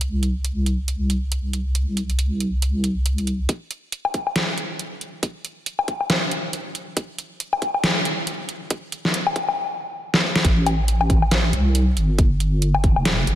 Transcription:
Already playing: wobble bass C2
0.01 closed hi-hat
0.23 closed hi-hat
0.45 closed hi-hat
0.66 closed hi-hat
0.88 closed hi-hat
1.10 closed hi-hat
1.32 closed hi-hat
1.53 closed hi-hat
1.75 closed hi-hat
1.97 closed hi-hat
2.10 closed hi-hat
2.19 closed hi-hat
2.40 closed hi-hat
2.62 closed hi-hat
2.84 closed hi-hat
3.06 closed hi-hat
3.18 closed hi-hat
3.27 closed hi-hat
3.49 kick, closed hi-hat
3.71 closed hi-hat
3.92 closed hi-hat
4.05 low woodblock
4.14 kick, closed hi-hat
4.27 low woodblock
4.36 snare, closed hi-hat
4.58 closed hi-hat
4.79 closed hi-hat
5.01 closed hi-hat
5.23 kick, closed hi-hat
5.45 closed hi-hat
5.66 closed hi-hat
5.79 low woodblock
5.88 kick, closed hi-hat
6.01 low woodblock
6.10 snare, closed hi-hat
6.31 closed hi-hat
6.53 closed hi-hat
6.75 closed hi-hat
6.97 kick, closed hi-hat
7.18 closed hi-hat
7.40 closed hi-hat
7.53 low woodblock
7.62 kick, closed hi-hat
7.74 low woodblock
7.84 snare, closed hi-hat
8.05 closed hi-hat
8.27 closed hi-hat
8.49 closed hi-hat
8.70 kick, closed hi-hat
8.92 closed hi-hat
9.05 snare
9.14 closed hi-hat
9.27 low woodblock
9.36 kick, closed hi-hat
9.49 low woodblock
10.14 snare
10.36 snare
10.45 wobble bass A1, kick, closed hi-hat
10.66 closed hi-hat, low woodblock
10.88 closed hi-hat
11.01 low woodblock
11.10 kick, closed hi-hat
11.22 low woodblock
11.31 snare, closed hi-hat
11.53 wobble bass C2, closed hi-hat
11.75 closed hi-hat
11.97 wobble bass G1, closed hi-hat
12.18 kick, closed hi-hat
12.40 closed hi-hat
12.62 closed hi-hat
12.74 low woodblock
12.84 kick, closed hi-hat
12.96 wobble bass E1, low woodblock
13.05 snare, closed hi-hat
13.27 wobble bass G1, closed hi-hat

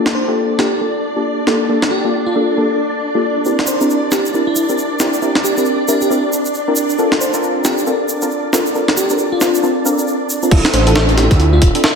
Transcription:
Already playing: synth stab A#3 D4 F4 G4 A4, string machine D4 D5
0.06 snare
0.15 fm electric piano C5
0.28 synth stab A#3 D4 F4 G4 A4
0.59 synth stab A#3 D4 F4 G4 A4, fm electric piano G4, snare
0.81 synth stab A#3 D4 F4 G4 A4
1.16 synth stab A#3 D4 F4 G4 A4
1.47 synth stab A#3 D4 F4 G4 A4, snare
1.69 synth stab A#3 D4 F4 G4 A4
1.82 snare
1.91 fm electric piano G4
2.04 synth stab A#3 D4 F4 G4 A4
2.26 fm electric piano F4
2.35 synth stab A#3 D4 F4 G4 A4
2.57 synth stab A#3 D4 F4 G4 A4
3.15 synth stab A#3 D4 F4 G4 A4
3.45 synth stab C4 D4 E4 G4 A#4, shaker
3.59 snare
3.67 fm electric piano C5, shaker
3.81 synth stab C4 D4 E4 G4 A#4, shaker
3.90 shaker
4.12 synth stab C4 D4 E4 G4 A#4, fm electric piano G4, snare, shaker
4.26 shaker
4.34 synth stab C4 D4 E4 G4 A#4, shaker
4.47 fm electric piano E4
4.56 fm electric piano E4, shaker
4.69 synth stab C4 D4 E4 G4 A#4, shaker
4.78 shaker
5.00 synth stab C4 D4 E4 G4 A#4, snare, shaker
5.13 shaker
5.22 synth stab C4 D4 E4 G4 A#4, shaker
5.35 snare
5.44 fm electric piano G4, shaker
5.57 synth stab C4 D4 E4 G4 A#4, fm electric piano G4, shaker
5.65 shaker
5.88 synth stab C4 D4 E4 G4 A#4, fm electric piano G4, shaker
6.01 fm electric piano G4, shaker
6.10 synth stab C4 D4 E4 G4 A#4, shaker
6.33 shaker
6.45 shaker
6.54 shaker
6.68 synth stab C4 D4 E4 G4 A#4
6.76 shaker
6.89 shaker
6.98 synth stab C4 D4 F4 A4 A#4, shaker
7.12 snare
7.21 fm electric piano C5, shaker
7.34 synth stab C4 D4 F4 A4 A#4, shaker
7.43 shaker
7.65 synth stab C4 D4 F4 A4 A#4, fm electric piano G4, snare, shaker
7.78 shaker
7.86 synth stab C4 D4 F4 A4 A#4, shaker
8.09 shaker
8.22 synth stab C4 D4 F4 A4 A#4, shaker
8.31 shaker
8.53 synth stab C4 D4 F4 A4 A#4, snare, shaker
8.66 shaker
8.75 synth stab C4 D4 F4 A4 A#4, shaker
8.88 snare
8.97 fm electric piano G4, shaker
9.10 synth stab C4 D4 F4 A4 A#4, shaker
9.18 shaker
9.32 fm electric piano F4
9.41 synth stab C4 D4 F4 A4 A#4, snare, shaker
9.55 shaker
9.63 synth stab C4 D4 F4 A4 A#4, shaker
9.85 synth stab C4 D4 F4 A4 A#4, shaker
9.99 shaker
10.07 shaker
10.30 shaker
10.43 synth stab C4 D4 F4 A4 A#4, shaker
10.51 detuned saw bass D1, synth stab C4 D4 E4 F4 A4, string machine D4 E5, kick, crash
10.65 snare, closed hi-hat
10.73 detuned saw bass A1, fm electric piano C5, closed hi-hat
10.87 synth stab C4 D4 E4 F4 A4, closed hi-hat
10.96 snare
11.09 closed hi-hat
11.18 synth stab C4 D4 E4 F4 A4, fm electric piano G4, snare, closed hi-hat
11.31 detuned saw bass D2, kick, closed hi-hat
11.40 synth stab C4 D4 E4 F4 A4, closed hi-hat
11.53 fm electric piano F4
11.62 detuned saw bass D1, fm electric piano F4, kick, closed hi-hat
11.75 synth stab C4 D4 E4 F4 A4, closed hi-hat
11.84 snare

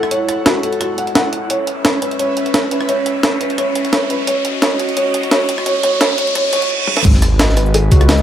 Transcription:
Already playing: analog synth pad E4 A4 F#5, felt piano F#4 A4 C#5, riser
0.03 cross-stick
0.11 felt piano C#5, closed hi-hat
0.29 cross-stick, closed hi-hat
0.46 felt piano F#4, snare, closed hi-hat
0.63 felt piano A4, closed hi-hat
0.73 closed hi-hat
0.81 felt piano F#4, cross-stick, closed hi-hat
0.98 felt piano F#5, closed hi-hat
1.07 closed hi-hat
1.15 felt piano F#5, snare, closed hi-hat
1.33 closed hi-hat
1.50 analog synth pad C#4 B4 E5, felt piano C#5, closed hi-hat
1.67 closed hi-hat
1.85 felt piano C#5, snare, closed hi-hat
2.02 felt piano B4, closed hi-hat
2.11 closed hi-hat
2.19 felt piano C#5, closed hi-hat
2.37 closed hi-hat
2.46 closed hi-hat
2.54 felt piano C#5, snare, closed hi-hat
2.71 felt piano B4, closed hi-hat
2.81 cross-stick
2.89 felt piano C#5, closed hi-hat
3.06 closed hi-hat
3.23 felt piano C#5, snare, closed hi-hat
3.41 felt piano B4, closed hi-hat
3.50 closed hi-hat
3.58 felt piano C#5, cross-stick, closed hi-hat
3.75 closed hi-hat
3.85 closed hi-hat
3.93 felt piano C#5, snare, closed hi-hat
4.10 felt piano B4, closed hi-hat
4.27 analog synth pad F#4 D#5, felt piano C#5, closed hi-hat
4.45 closed hi-hat
4.62 felt piano C#5, snare, closed hi-hat
4.79 closed hi-hat
4.89 closed hi-hat
4.97 felt piano C#5, closed hi-hat
5.14 closed hi-hat
5.23 closed hi-hat
5.31 felt piano C#5, snare, closed hi-hat
5.49 closed hi-hat
5.58 cross-stick
5.66 felt piano C#5, closed hi-hat
5.83 felt piano C#5, cross-stick, closed hi-hat
6.01 felt piano C#5, snare, closed hi-hat
6.18 felt piano C#5, closed hi-hat
6.27 closed hi-hat
6.35 felt piano C#5, cross-stick, closed hi-hat, reverse cymbal
6.53 felt piano C#5, closed hi-hat
6.62 closed hi-hat
6.87 high tom
6.97 snare
7.05 detuned saw bass G#1, analog synth pad G#3 F#4 B4, kick, closed hi-hat, crash, sub drop
7.14 snare
7.22 cross-stick, closed hi-hat, shaker
7.39 felt piano D#5, snare, closed hi-hat
7.49 snare
7.57 felt piano B4, cross-stick, closed hi-hat, shaker
7.66 shaker
7.74 felt piano G#4, closed hi-hat
7.91 detuned saw bass C#2, felt piano F#4, kick, closed hi-hat, shaker
8.01 cross-stick, closed hi-hat
8.09 felt piano D#5, snare, closed hi-hat
8.18 shaker

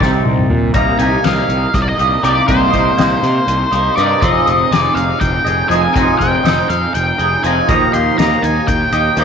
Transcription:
0.00 picked electric bass C2, clean electric guitar C3 G3 C4 D#4 G4 D5, kick, snare
0.26 picked electric bass C2, high tom
0.38 mid tom
0.50 picked electric bass A#2, mid tom
0.62 floor tom
0.74 picked electric bass C2, clean electric guitar C3 G3 A#3 D#4 G4 D#5, lead electric guitar A#5, kick, closed hi-hat
0.99 picked electric bass C2, clean electric guitar A#3 D#4 G4 D#5, lead electric guitar G#5, closed hi-hat
1.24 picked electric bass C2, clean electric guitar A#3 D#4 G4 D#5, lead electric guitar F5, snare, closed hi-hat
1.49 picked electric bass C2, closed hi-hat
1.74 picked electric bass C2, lead electric guitar D#5, kick, snare, closed hi-hat
1.82 lead electric guitar D5
1.89 lead electric guitar D#5
1.98 picked electric bass C2, clean electric guitar A#3 D#4 G4 D#5, closed hi-hat
2.23 picked electric bass C2, clean electric guitar C3 G3 A#3 D#4 G4 D#5, lead electric guitar D5, closed hi-hat
2.47 picked electric bass C2, clean electric guitar C3 G3 A#3 D#4 G4 D#5, lead electric guitar C5, kick, closed hi-hat
2.72 picked electric bass C2, clean electric guitar A#3 D#4 G4 D#5, kick, snare, closed hi-hat
2.97 picked electric bass C2, clean electric guitar A#3 D#4 G4 D#5, snare, closed hi-hat
3.23 picked electric bass C3, snare, closed hi-hat
3.47 picked electric bass C2, closed hi-hat
3.71 picked electric bass C2, clean electric guitar A#3 D#4 G4 D#5, closed hi-hat
3.96 picked electric bass G2, clean electric guitar C3 G3 A#3 D#4 G4 D#5, lead electric guitar D5, closed hi-hat
4.21 picked electric bass F1, clean electric guitar F3 C4 D#4 G#4 D#5, lead electric guitar D#5, kick, closed hi-hat
4.46 picked electric bass F1, clean electric guitar D#4 G#4 D#5, closed hi-hat
4.71 picked electric bass F1, clean electric guitar C4 D#4 G#4 D#5, lead electric guitar D5, snare, closed hi-hat
4.95 picked electric bass F1, lead electric guitar F5, closed hi-hat
5.20 picked electric bass F1, lead electric guitar G5, kick, closed hi-hat
5.45 picked electric bass F1, clean electric guitar D#4 G#4 D#5, closed hi-hat
5.69 picked electric bass F1, clean electric guitar F3 C4 D#4 G#4 D#5, lead electric guitar G#5, snare, closed hi-hat
5.94 picked electric bass F1, clean electric guitar F3 C4 D#4 G#4 D#5, lead electric guitar G#5, kick, closed hi-hat
6.19 picked electric bass F1, clean electric guitar D#4 G#4 D#5, lead electric guitar G5, kick, closed hi-hat
6.43 picked electric bass F1, clean electric guitar C4 D#4 G#4 D#5, snare, closed hi-hat
6.69 picked electric bass F2, lead electric guitar F5, closed hi-hat
6.94 picked electric bass F1, lead electric guitar G5, closed hi-hat
7.18 picked electric bass F1, clean electric guitar D#4 G#4 D#5, closed hi-hat
7.44 picked electric bass F1, clean electric guitar F3 C4 D#4 G#4 D#5, lead electric guitar G#5, closed hi-hat
7.68 picked electric bass D#2, clean electric guitar D#3 F3 A#3 D#4 G4 D#5, lead electric guitar A#5, kick, closed hi-hat
7.93 picked electric bass D#2, clean electric guitar A#3 D#4 G4 D#5, lead electric guitar C6, closed hi-hat
8.18 picked electric bass D#2, clean electric guitar A#3 D#4 G4 D#5, lead electric guitar A#5, snare, closed hi-hat
8.42 picked electric bass D#2, lead electric guitar G#5, closed hi-hat
8.68 picked electric bass D#2, lead electric guitar G5, kick, closed hi-hat
8.92 picked electric bass D#2, clean electric guitar A#3 D#4 G4 D#5, closed hi-hat
9.17 picked electric bass D#2, clean electric guitar D#3 F3 A#3 D#4 G4 D#5, closed hi-hat

